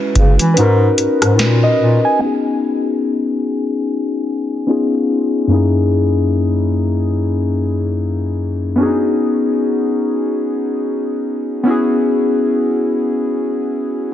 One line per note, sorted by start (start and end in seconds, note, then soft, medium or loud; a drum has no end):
0.00 0.51 G#3 medium
0.00 0.52 C#4 medium
0.00 0.53 E4 medium
0.00 0.54 F#4 medium
0.00 0.53 B4 medium
0.15 0.34 C#3 medium
0.15 kick loud
0.15 closed hi-hat soft
0.39 0.53 E3 medium
0.39 closed hi-hat medium
0.54 0.89 G#2 loud
0.54 2.17 C#4 medium
0.54 2.18 D#4 medium
0.54 1.39 B4 medium
0.54 closed hi-hat medium
0.59 2.19 F#4 medium
0.59 1.39 A#4 medium
0.98 1.08 G#2 soft
0.98 closed hi-hat medium
1.22 1.41 G#2 medium
1.22 cross-stick medium
1.22 closed hi-hat medium
1.39 1.71 A#2 medium
1.39 1.62 B4 medium
1.39 snare loud
1.39 closed hi-hat medium
1.63 2.02 D#5 medium
1.81 1.99 A#2 medium
2.05 2.43 G#5 medium
2.19 4.63 B3 medium
2.19 4.63 C#4 medium
2.19 4.64 D#4 medium
2.24 4.65 F#4 medium
2.24 4.66 G#4 medium
4.67 5.49 B3 medium
4.67 5.49 C#4 medium
4.67 5.50 D#4 medium
4.67 5.51 F4 medium
4.67 5.51 G#4 medium
5.47 8.73 F#2 medium
5.47 8.74 A#3 medium
5.47 8.75 C#4 medium
5.51 8.75 D#4 medium
5.51 8.76 E4 medium
5.51 8.77 G#4 medium
8.76 11.61 B3 medium
8.76 11.62 C#4 medium
8.76 8.86 D4 medium
8.81 11.63 F#4 medium
8.81 11.64 G#4 medium
8.85 11.66 D#4 medium
11.63 14.07 B3 medium
11.63 14.08 C#4 medium
11.63 14.09 E4 medium
11.69 14.10 F#4 medium
11.69 14.11 G#4 medium